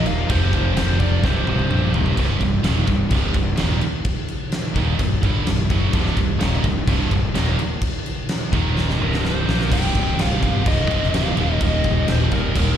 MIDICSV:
0, 0, Header, 1, 7, 480
1, 0, Start_track
1, 0, Key_signature, -3, "minor"
1, 0, Tempo, 470958
1, 305, Time_signature, 4, 2, 24, 8
1, 13015, End_track
2, 0, Start_track
2, 0, Title_t, "Lead electric guitar"
2, 0, Program_c, 0, 29
2, 71, Note_on_c, 0, 77, 91
2, 291, Note_off_c, 0, 77, 0
2, 300, Note_on_c, 0, 72, 94
2, 652, Note_off_c, 0, 72, 0
2, 665, Note_on_c, 0, 72, 94
2, 998, Note_off_c, 0, 72, 0
2, 1011, Note_on_c, 0, 74, 95
2, 1264, Note_off_c, 0, 74, 0
2, 1267, Note_on_c, 0, 72, 85
2, 1942, Note_off_c, 0, 72, 0
2, 9205, Note_on_c, 0, 70, 75
2, 9426, Note_off_c, 0, 70, 0
2, 9430, Note_on_c, 0, 72, 87
2, 9915, Note_on_c, 0, 79, 95
2, 9923, Note_off_c, 0, 72, 0
2, 10358, Note_off_c, 0, 79, 0
2, 10403, Note_on_c, 0, 77, 94
2, 10873, Note_off_c, 0, 77, 0
2, 10877, Note_on_c, 0, 75, 94
2, 11320, Note_off_c, 0, 75, 0
2, 11376, Note_on_c, 0, 77, 91
2, 11847, Note_off_c, 0, 77, 0
2, 11851, Note_on_c, 0, 75, 94
2, 12288, Note_off_c, 0, 75, 0
2, 12326, Note_on_c, 0, 72, 89
2, 12388, Note_off_c, 0, 72, 0
2, 12565, Note_on_c, 0, 70, 89
2, 13015, Note_off_c, 0, 70, 0
2, 13015, End_track
3, 0, Start_track
3, 0, Title_t, "Distorted electric guitar"
3, 0, Program_c, 1, 30
3, 49, Note_on_c, 1, 46, 87
3, 52, Note_on_c, 1, 53, 97
3, 59, Note_on_c, 1, 58, 105
3, 282, Note_off_c, 1, 46, 0
3, 284, Note_off_c, 1, 53, 0
3, 287, Note_off_c, 1, 58, 0
3, 525, Note_on_c, 1, 41, 97
3, 528, Note_on_c, 1, 48, 99
3, 535, Note_on_c, 1, 53, 99
3, 769, Note_off_c, 1, 41, 0
3, 771, Note_off_c, 1, 53, 0
3, 772, Note_off_c, 1, 48, 0
3, 781, Note_on_c, 1, 41, 88
3, 783, Note_on_c, 1, 53, 114
3, 784, Note_on_c, 1, 48, 101
3, 994, Note_off_c, 1, 41, 0
3, 1002, Note_off_c, 1, 48, 0
3, 1002, Note_off_c, 1, 53, 0
3, 1006, Note_on_c, 1, 41, 88
3, 1014, Note_on_c, 1, 48, 85
3, 1014, Note_on_c, 1, 53, 94
3, 1240, Note_off_c, 1, 41, 0
3, 1243, Note_off_c, 1, 53, 0
3, 1244, Note_off_c, 1, 48, 0
3, 1487, Note_on_c, 1, 36, 94
3, 1489, Note_on_c, 1, 43, 86
3, 1495, Note_on_c, 1, 48, 101
3, 1716, Note_off_c, 1, 36, 0
3, 1719, Note_off_c, 1, 43, 0
3, 1724, Note_off_c, 1, 48, 0
3, 1728, Note_on_c, 1, 36, 88
3, 1732, Note_on_c, 1, 43, 101
3, 1736, Note_on_c, 1, 48, 107
3, 1953, Note_off_c, 1, 36, 0
3, 1957, Note_off_c, 1, 43, 0
3, 1966, Note_on_c, 1, 36, 91
3, 1969, Note_on_c, 1, 43, 86
3, 1970, Note_off_c, 1, 48, 0
3, 1983, Note_on_c, 1, 48, 103
3, 2198, Note_off_c, 1, 36, 0
3, 2200, Note_off_c, 1, 43, 0
3, 2207, Note_off_c, 1, 48, 0
3, 13015, End_track
4, 0, Start_track
4, 0, Title_t, "Distorted electric guitar"
4, 0, Program_c, 2, 30
4, 10860, Note_on_c, 2, 36, 83
4, 10877, Note_on_c, 2, 43, 88
4, 10883, Note_on_c, 2, 48, 91
4, 11570, Note_off_c, 2, 36, 0
4, 11579, Note_off_c, 2, 43, 0
4, 11582, Note_off_c, 2, 48, 0
4, 12548, Note_on_c, 2, 51, 85
4, 12564, Note_on_c, 2, 46, 76
4, 12574, Note_on_c, 2, 39, 70
4, 13015, Note_off_c, 2, 39, 0
4, 13015, Note_off_c, 2, 46, 0
4, 13015, Note_off_c, 2, 51, 0
4, 13015, End_track
5, 0, Start_track
5, 0, Title_t, "Distorted electric guitar"
5, 0, Program_c, 3, 30
5, 295, Note_on_c, 3, 41, 91
5, 309, Note_on_c, 3, 48, 89
5, 322, Note_on_c, 3, 53, 102
5, 1243, Note_off_c, 3, 41, 0
5, 1249, Note_on_c, 3, 36, 94
5, 1250, Note_off_c, 3, 48, 0
5, 1256, Note_off_c, 3, 53, 0
5, 1269, Note_on_c, 3, 43, 111
5, 1281, Note_on_c, 3, 48, 98
5, 2199, Note_off_c, 3, 36, 0
5, 2207, Note_off_c, 3, 43, 0
5, 2210, Note_on_c, 3, 36, 94
5, 2213, Note_off_c, 3, 48, 0
5, 2219, Note_on_c, 3, 43, 101
5, 2225, Note_on_c, 3, 48, 114
5, 2440, Note_off_c, 3, 43, 0
5, 2441, Note_off_c, 3, 36, 0
5, 2452, Note_on_c, 3, 43, 69
5, 2453, Note_on_c, 3, 36, 56
5, 2455, Note_off_c, 3, 48, 0
5, 2648, Note_off_c, 3, 36, 0
5, 2648, Note_off_c, 3, 43, 0
5, 2683, Note_on_c, 3, 39, 94
5, 2694, Note_on_c, 3, 46, 103
5, 2701, Note_on_c, 3, 51, 95
5, 2923, Note_off_c, 3, 39, 0
5, 2928, Note_on_c, 3, 36, 67
5, 2929, Note_off_c, 3, 46, 0
5, 2933, Note_off_c, 3, 51, 0
5, 2936, Note_on_c, 3, 43, 75
5, 3125, Note_off_c, 3, 36, 0
5, 3129, Note_off_c, 3, 43, 0
5, 3171, Note_on_c, 3, 36, 97
5, 3177, Note_on_c, 3, 43, 97
5, 3184, Note_on_c, 3, 48, 124
5, 3395, Note_off_c, 3, 36, 0
5, 3395, Note_off_c, 3, 43, 0
5, 3407, Note_on_c, 3, 43, 76
5, 3408, Note_on_c, 3, 36, 68
5, 3414, Note_off_c, 3, 48, 0
5, 3605, Note_off_c, 3, 36, 0
5, 3605, Note_off_c, 3, 43, 0
5, 3652, Note_on_c, 3, 39, 98
5, 3656, Note_on_c, 3, 46, 91
5, 3659, Note_on_c, 3, 51, 104
5, 3888, Note_off_c, 3, 39, 0
5, 3890, Note_off_c, 3, 46, 0
5, 3891, Note_off_c, 3, 51, 0
5, 4856, Note_on_c, 3, 39, 93
5, 4859, Note_on_c, 3, 46, 99
5, 4859, Note_on_c, 3, 51, 101
5, 5090, Note_off_c, 3, 39, 0
5, 5092, Note_off_c, 3, 46, 0
5, 5092, Note_off_c, 3, 51, 0
5, 5100, Note_on_c, 3, 36, 69
5, 5102, Note_on_c, 3, 43, 77
5, 5291, Note_off_c, 3, 36, 0
5, 5292, Note_off_c, 3, 43, 0
5, 5339, Note_on_c, 3, 43, 98
5, 5347, Note_on_c, 3, 50, 99
5, 5350, Note_on_c, 3, 55, 107
5, 5567, Note_off_c, 3, 43, 0
5, 5576, Note_off_c, 3, 50, 0
5, 5577, Note_off_c, 3, 55, 0
5, 5580, Note_on_c, 3, 43, 75
5, 5581, Note_on_c, 3, 36, 65
5, 5772, Note_off_c, 3, 36, 0
5, 5772, Note_off_c, 3, 43, 0
5, 5820, Note_on_c, 3, 42, 90
5, 5822, Note_on_c, 3, 49, 104
5, 5828, Note_on_c, 3, 54, 104
5, 6045, Note_off_c, 3, 42, 0
5, 6049, Note_on_c, 3, 36, 98
5, 6050, Note_off_c, 3, 49, 0
5, 6054, Note_on_c, 3, 43, 110
5, 6056, Note_off_c, 3, 54, 0
5, 6060, Note_on_c, 3, 48, 103
5, 6283, Note_off_c, 3, 36, 0
5, 6287, Note_off_c, 3, 43, 0
5, 6293, Note_off_c, 3, 48, 0
5, 6295, Note_on_c, 3, 36, 69
5, 6299, Note_on_c, 3, 43, 66
5, 6490, Note_off_c, 3, 36, 0
5, 6492, Note_off_c, 3, 43, 0
5, 6521, Note_on_c, 3, 39, 91
5, 6528, Note_on_c, 3, 46, 106
5, 6540, Note_on_c, 3, 51, 98
5, 6761, Note_off_c, 3, 39, 0
5, 6765, Note_on_c, 3, 36, 65
5, 6767, Note_off_c, 3, 46, 0
5, 6773, Note_off_c, 3, 51, 0
5, 6774, Note_on_c, 3, 43, 72
5, 6965, Note_off_c, 3, 36, 0
5, 6969, Note_off_c, 3, 43, 0
5, 7009, Note_on_c, 3, 36, 103
5, 7015, Note_on_c, 3, 43, 107
5, 7022, Note_on_c, 3, 48, 105
5, 7240, Note_off_c, 3, 43, 0
5, 7241, Note_off_c, 3, 36, 0
5, 7253, Note_on_c, 3, 36, 73
5, 7253, Note_on_c, 3, 43, 80
5, 7255, Note_off_c, 3, 48, 0
5, 7449, Note_off_c, 3, 43, 0
5, 7450, Note_off_c, 3, 36, 0
5, 7486, Note_on_c, 3, 39, 107
5, 7491, Note_on_c, 3, 46, 114
5, 7491, Note_on_c, 3, 51, 110
5, 7727, Note_off_c, 3, 39, 0
5, 7729, Note_off_c, 3, 46, 0
5, 7729, Note_off_c, 3, 51, 0
5, 8698, Note_on_c, 3, 39, 101
5, 8700, Note_on_c, 3, 46, 102
5, 8710, Note_on_c, 3, 51, 107
5, 9168, Note_off_c, 3, 39, 0
5, 9168, Note_off_c, 3, 46, 0
5, 9172, Note_on_c, 3, 36, 85
5, 9172, Note_on_c, 3, 43, 105
5, 9177, Note_off_c, 3, 51, 0
5, 9181, Note_on_c, 3, 48, 102
5, 9638, Note_off_c, 3, 36, 0
5, 9642, Note_on_c, 3, 46, 84
5, 9645, Note_off_c, 3, 43, 0
5, 9649, Note_off_c, 3, 48, 0
5, 9649, Note_on_c, 3, 53, 97
5, 9653, Note_on_c, 3, 58, 104
5, 9879, Note_off_c, 3, 46, 0
5, 9883, Note_on_c, 3, 36, 87
5, 9891, Note_off_c, 3, 53, 0
5, 9892, Note_off_c, 3, 58, 0
5, 9903, Note_on_c, 3, 43, 99
5, 9914, Note_on_c, 3, 48, 110
5, 11082, Note_off_c, 3, 36, 0
5, 11091, Note_off_c, 3, 48, 0
5, 11092, Note_off_c, 3, 43, 0
5, 11104, Note_on_c, 3, 48, 95
5, 11119, Note_on_c, 3, 43, 79
5, 11135, Note_on_c, 3, 36, 78
5, 11332, Note_off_c, 3, 36, 0
5, 11332, Note_off_c, 3, 48, 0
5, 11339, Note_off_c, 3, 43, 0
5, 11344, Note_on_c, 3, 36, 81
5, 11363, Note_on_c, 3, 43, 84
5, 11366, Note_on_c, 3, 48, 96
5, 11572, Note_off_c, 3, 36, 0
5, 11581, Note_off_c, 3, 43, 0
5, 11583, Note_off_c, 3, 48, 0
5, 11583, Note_on_c, 3, 39, 104
5, 11599, Note_on_c, 3, 46, 99
5, 11612, Note_on_c, 3, 51, 103
5, 12773, Note_off_c, 3, 39, 0
5, 12781, Note_off_c, 3, 46, 0
5, 12788, Note_off_c, 3, 51, 0
5, 12791, Note_on_c, 3, 39, 88
5, 12807, Note_on_c, 3, 46, 84
5, 12815, Note_on_c, 3, 51, 92
5, 13015, Note_off_c, 3, 39, 0
5, 13015, Note_off_c, 3, 46, 0
5, 13015, Note_off_c, 3, 51, 0
5, 13015, End_track
6, 0, Start_track
6, 0, Title_t, "Fingered electric bass"
6, 0, Program_c, 4, 33
6, 58, Note_on_c, 4, 27, 92
6, 275, Note_off_c, 4, 27, 0
6, 300, Note_on_c, 4, 29, 101
6, 515, Note_off_c, 4, 29, 0
6, 540, Note_on_c, 4, 29, 93
6, 755, Note_off_c, 4, 29, 0
6, 776, Note_on_c, 4, 29, 104
6, 992, Note_off_c, 4, 29, 0
6, 1018, Note_on_c, 4, 29, 103
6, 1233, Note_off_c, 4, 29, 0
6, 1256, Note_on_c, 4, 24, 99
6, 1472, Note_off_c, 4, 24, 0
6, 1505, Note_on_c, 4, 24, 100
6, 1717, Note_off_c, 4, 24, 0
6, 1736, Note_on_c, 4, 34, 92
6, 1951, Note_off_c, 4, 34, 0
6, 1979, Note_on_c, 4, 27, 92
6, 2193, Note_off_c, 4, 27, 0
6, 2217, Note_on_c, 4, 24, 97
6, 2441, Note_off_c, 4, 24, 0
6, 2458, Note_on_c, 4, 24, 82
6, 2682, Note_off_c, 4, 24, 0
6, 2689, Note_on_c, 4, 27, 104
6, 2917, Note_off_c, 4, 27, 0
6, 2931, Note_on_c, 4, 24, 89
6, 3158, Note_off_c, 4, 24, 0
6, 3169, Note_on_c, 4, 24, 94
6, 3396, Note_off_c, 4, 24, 0
6, 3409, Note_on_c, 4, 24, 90
6, 3637, Note_off_c, 4, 24, 0
6, 3658, Note_on_c, 4, 27, 99
6, 3881, Note_off_c, 4, 27, 0
6, 4844, Note_on_c, 4, 27, 101
6, 5074, Note_off_c, 4, 27, 0
6, 5084, Note_on_c, 4, 24, 89
6, 5314, Note_off_c, 4, 24, 0
6, 5329, Note_on_c, 4, 31, 105
6, 5557, Note_off_c, 4, 31, 0
6, 5570, Note_on_c, 4, 24, 83
6, 5798, Note_off_c, 4, 24, 0
6, 5810, Note_on_c, 4, 30, 103
6, 6038, Note_off_c, 4, 30, 0
6, 6046, Note_on_c, 4, 24, 95
6, 6276, Note_off_c, 4, 24, 0
6, 6286, Note_on_c, 4, 24, 86
6, 6516, Note_off_c, 4, 24, 0
6, 6542, Note_on_c, 4, 27, 102
6, 6759, Note_off_c, 4, 27, 0
6, 6765, Note_on_c, 4, 24, 89
6, 6996, Note_off_c, 4, 24, 0
6, 7004, Note_on_c, 4, 24, 105
6, 7236, Note_off_c, 4, 24, 0
6, 7248, Note_on_c, 4, 24, 91
6, 7475, Note_off_c, 4, 24, 0
6, 7482, Note_on_c, 4, 27, 96
6, 7715, Note_off_c, 4, 27, 0
6, 8689, Note_on_c, 4, 27, 103
6, 9143, Note_off_c, 4, 27, 0
6, 9175, Note_on_c, 4, 24, 98
6, 9627, Note_off_c, 4, 24, 0
6, 9659, Note_on_c, 4, 34, 102
6, 9885, Note_off_c, 4, 34, 0
6, 9900, Note_on_c, 4, 24, 99
6, 10116, Note_off_c, 4, 24, 0
6, 10141, Note_on_c, 4, 24, 97
6, 10357, Note_off_c, 4, 24, 0
6, 10382, Note_on_c, 4, 24, 100
6, 10598, Note_off_c, 4, 24, 0
6, 10621, Note_on_c, 4, 31, 97
6, 10838, Note_off_c, 4, 31, 0
6, 10865, Note_on_c, 4, 24, 94
6, 11080, Note_off_c, 4, 24, 0
6, 11113, Note_on_c, 4, 29, 101
6, 11324, Note_off_c, 4, 29, 0
6, 11346, Note_on_c, 4, 26, 97
6, 11561, Note_off_c, 4, 26, 0
6, 11590, Note_on_c, 4, 27, 102
6, 11803, Note_off_c, 4, 27, 0
6, 11835, Note_on_c, 4, 27, 101
6, 12046, Note_off_c, 4, 27, 0
6, 12074, Note_on_c, 4, 27, 95
6, 12286, Note_off_c, 4, 27, 0
6, 12316, Note_on_c, 4, 27, 102
6, 12527, Note_off_c, 4, 27, 0
6, 12553, Note_on_c, 4, 27, 97
6, 12766, Note_off_c, 4, 27, 0
6, 12798, Note_on_c, 4, 27, 98
6, 13009, Note_off_c, 4, 27, 0
6, 13015, End_track
7, 0, Start_track
7, 0, Title_t, "Drums"
7, 58, Note_on_c, 9, 49, 69
7, 160, Note_off_c, 9, 49, 0
7, 304, Note_on_c, 9, 36, 119
7, 305, Note_on_c, 9, 49, 90
7, 405, Note_off_c, 9, 36, 0
7, 407, Note_off_c, 9, 49, 0
7, 538, Note_on_c, 9, 49, 61
7, 540, Note_on_c, 9, 36, 90
7, 640, Note_off_c, 9, 49, 0
7, 642, Note_off_c, 9, 36, 0
7, 781, Note_on_c, 9, 49, 93
7, 789, Note_on_c, 9, 38, 120
7, 883, Note_off_c, 9, 49, 0
7, 890, Note_off_c, 9, 38, 0
7, 1016, Note_on_c, 9, 49, 64
7, 1019, Note_on_c, 9, 36, 84
7, 1118, Note_off_c, 9, 49, 0
7, 1121, Note_off_c, 9, 36, 0
7, 1260, Note_on_c, 9, 36, 119
7, 1268, Note_on_c, 9, 38, 68
7, 1362, Note_off_c, 9, 36, 0
7, 1370, Note_off_c, 9, 38, 0
7, 1501, Note_on_c, 9, 48, 79
7, 1603, Note_off_c, 9, 48, 0
7, 1623, Note_on_c, 9, 48, 66
7, 1725, Note_off_c, 9, 48, 0
7, 1740, Note_on_c, 9, 47, 93
7, 1841, Note_off_c, 9, 47, 0
7, 1979, Note_on_c, 9, 43, 109
7, 2081, Note_off_c, 9, 43, 0
7, 2099, Note_on_c, 9, 43, 97
7, 2201, Note_off_c, 9, 43, 0
7, 2216, Note_on_c, 9, 36, 112
7, 2218, Note_on_c, 9, 49, 92
7, 2317, Note_off_c, 9, 36, 0
7, 2320, Note_off_c, 9, 49, 0
7, 2452, Note_on_c, 9, 49, 66
7, 2454, Note_on_c, 9, 36, 91
7, 2554, Note_off_c, 9, 49, 0
7, 2556, Note_off_c, 9, 36, 0
7, 2691, Note_on_c, 9, 49, 90
7, 2698, Note_on_c, 9, 38, 122
7, 2793, Note_off_c, 9, 49, 0
7, 2800, Note_off_c, 9, 38, 0
7, 2926, Note_on_c, 9, 49, 61
7, 2932, Note_on_c, 9, 36, 93
7, 3028, Note_off_c, 9, 49, 0
7, 3033, Note_off_c, 9, 36, 0
7, 3165, Note_on_c, 9, 49, 93
7, 3170, Note_on_c, 9, 36, 119
7, 3266, Note_off_c, 9, 49, 0
7, 3272, Note_off_c, 9, 36, 0
7, 3406, Note_on_c, 9, 49, 61
7, 3408, Note_on_c, 9, 36, 95
7, 3508, Note_off_c, 9, 49, 0
7, 3510, Note_off_c, 9, 36, 0
7, 3641, Note_on_c, 9, 49, 84
7, 3648, Note_on_c, 9, 38, 116
7, 3743, Note_off_c, 9, 49, 0
7, 3750, Note_off_c, 9, 38, 0
7, 3886, Note_on_c, 9, 49, 65
7, 3988, Note_off_c, 9, 49, 0
7, 4123, Note_on_c, 9, 49, 81
7, 4128, Note_on_c, 9, 36, 117
7, 4225, Note_off_c, 9, 49, 0
7, 4230, Note_off_c, 9, 36, 0
7, 4366, Note_on_c, 9, 49, 57
7, 4468, Note_off_c, 9, 49, 0
7, 4605, Note_on_c, 9, 49, 84
7, 4612, Note_on_c, 9, 38, 110
7, 4707, Note_off_c, 9, 49, 0
7, 4714, Note_off_c, 9, 38, 0
7, 4847, Note_on_c, 9, 49, 66
7, 4850, Note_on_c, 9, 36, 104
7, 4949, Note_off_c, 9, 49, 0
7, 4952, Note_off_c, 9, 36, 0
7, 5086, Note_on_c, 9, 49, 92
7, 5090, Note_on_c, 9, 36, 93
7, 5188, Note_off_c, 9, 49, 0
7, 5192, Note_off_c, 9, 36, 0
7, 5331, Note_on_c, 9, 36, 113
7, 5334, Note_on_c, 9, 49, 73
7, 5433, Note_off_c, 9, 36, 0
7, 5435, Note_off_c, 9, 49, 0
7, 5570, Note_on_c, 9, 49, 91
7, 5578, Note_on_c, 9, 38, 119
7, 5672, Note_off_c, 9, 49, 0
7, 5679, Note_off_c, 9, 38, 0
7, 5811, Note_on_c, 9, 36, 116
7, 5815, Note_on_c, 9, 49, 72
7, 5913, Note_off_c, 9, 36, 0
7, 5917, Note_off_c, 9, 49, 0
7, 6044, Note_on_c, 9, 49, 86
7, 6049, Note_on_c, 9, 36, 118
7, 6146, Note_off_c, 9, 49, 0
7, 6151, Note_off_c, 9, 36, 0
7, 6178, Note_on_c, 9, 38, 34
7, 6280, Note_off_c, 9, 38, 0
7, 6287, Note_on_c, 9, 49, 65
7, 6288, Note_on_c, 9, 36, 96
7, 6388, Note_off_c, 9, 49, 0
7, 6389, Note_off_c, 9, 36, 0
7, 6527, Note_on_c, 9, 49, 86
7, 6534, Note_on_c, 9, 38, 120
7, 6629, Note_off_c, 9, 49, 0
7, 6636, Note_off_c, 9, 38, 0
7, 6768, Note_on_c, 9, 36, 95
7, 6770, Note_on_c, 9, 49, 67
7, 6870, Note_off_c, 9, 36, 0
7, 6871, Note_off_c, 9, 49, 0
7, 7006, Note_on_c, 9, 49, 93
7, 7007, Note_on_c, 9, 36, 116
7, 7108, Note_off_c, 9, 49, 0
7, 7109, Note_off_c, 9, 36, 0
7, 7250, Note_on_c, 9, 36, 96
7, 7252, Note_on_c, 9, 49, 65
7, 7352, Note_off_c, 9, 36, 0
7, 7354, Note_off_c, 9, 49, 0
7, 7493, Note_on_c, 9, 49, 88
7, 7501, Note_on_c, 9, 38, 121
7, 7595, Note_off_c, 9, 49, 0
7, 7603, Note_off_c, 9, 38, 0
7, 7734, Note_on_c, 9, 49, 67
7, 7836, Note_off_c, 9, 49, 0
7, 7964, Note_on_c, 9, 49, 87
7, 7967, Note_on_c, 9, 36, 112
7, 8066, Note_off_c, 9, 49, 0
7, 8069, Note_off_c, 9, 36, 0
7, 8213, Note_on_c, 9, 49, 59
7, 8315, Note_off_c, 9, 49, 0
7, 8446, Note_on_c, 9, 49, 86
7, 8453, Note_on_c, 9, 38, 117
7, 8548, Note_off_c, 9, 49, 0
7, 8555, Note_off_c, 9, 38, 0
7, 8692, Note_on_c, 9, 36, 112
7, 8696, Note_on_c, 9, 49, 63
7, 8794, Note_off_c, 9, 36, 0
7, 8798, Note_off_c, 9, 49, 0
7, 8940, Note_on_c, 9, 38, 73
7, 9042, Note_off_c, 9, 38, 0
7, 9065, Note_on_c, 9, 38, 57
7, 9167, Note_off_c, 9, 38, 0
7, 9309, Note_on_c, 9, 38, 71
7, 9411, Note_off_c, 9, 38, 0
7, 9425, Note_on_c, 9, 38, 93
7, 9527, Note_off_c, 9, 38, 0
7, 9671, Note_on_c, 9, 38, 111
7, 9773, Note_off_c, 9, 38, 0
7, 9792, Note_on_c, 9, 38, 90
7, 9894, Note_off_c, 9, 38, 0
7, 9903, Note_on_c, 9, 36, 122
7, 9906, Note_on_c, 9, 49, 98
7, 9906, Note_on_c, 9, 57, 125
7, 10005, Note_off_c, 9, 36, 0
7, 10008, Note_off_c, 9, 49, 0
7, 10008, Note_off_c, 9, 57, 0
7, 10143, Note_on_c, 9, 49, 70
7, 10144, Note_on_c, 9, 36, 94
7, 10245, Note_off_c, 9, 49, 0
7, 10246, Note_off_c, 9, 36, 0
7, 10385, Note_on_c, 9, 49, 96
7, 10392, Note_on_c, 9, 38, 121
7, 10487, Note_off_c, 9, 49, 0
7, 10494, Note_off_c, 9, 38, 0
7, 10627, Note_on_c, 9, 36, 89
7, 10630, Note_on_c, 9, 49, 67
7, 10729, Note_off_c, 9, 36, 0
7, 10732, Note_off_c, 9, 49, 0
7, 10863, Note_on_c, 9, 49, 98
7, 10867, Note_on_c, 9, 36, 127
7, 10965, Note_off_c, 9, 49, 0
7, 10969, Note_off_c, 9, 36, 0
7, 11116, Note_on_c, 9, 49, 67
7, 11218, Note_off_c, 9, 49, 0
7, 11242, Note_on_c, 9, 38, 32
7, 11344, Note_off_c, 9, 38, 0
7, 11352, Note_on_c, 9, 49, 89
7, 11359, Note_on_c, 9, 38, 120
7, 11454, Note_off_c, 9, 49, 0
7, 11461, Note_off_c, 9, 38, 0
7, 11587, Note_on_c, 9, 49, 68
7, 11689, Note_off_c, 9, 49, 0
7, 11828, Note_on_c, 9, 49, 88
7, 11832, Note_on_c, 9, 36, 125
7, 11930, Note_off_c, 9, 49, 0
7, 11934, Note_off_c, 9, 36, 0
7, 12065, Note_on_c, 9, 49, 62
7, 12072, Note_on_c, 9, 36, 89
7, 12167, Note_off_c, 9, 49, 0
7, 12174, Note_off_c, 9, 36, 0
7, 12309, Note_on_c, 9, 49, 87
7, 12316, Note_on_c, 9, 38, 118
7, 12411, Note_off_c, 9, 49, 0
7, 12418, Note_off_c, 9, 38, 0
7, 12550, Note_on_c, 9, 49, 67
7, 12555, Note_on_c, 9, 36, 87
7, 12652, Note_off_c, 9, 49, 0
7, 12657, Note_off_c, 9, 36, 0
7, 12797, Note_on_c, 9, 36, 120
7, 12800, Note_on_c, 9, 49, 101
7, 12898, Note_off_c, 9, 36, 0
7, 12901, Note_off_c, 9, 49, 0
7, 13015, End_track
0, 0, End_of_file